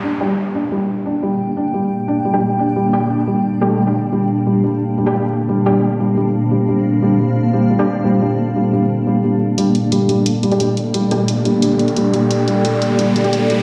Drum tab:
HH |----------------|----------------|----------------|----------------|

HH |----------------|----------------|----------------|x-x-x-x-x-xxx-x-|

HH |x-x-x-x-x-xxx-x-|x-x-x-x-x-xxx-x-|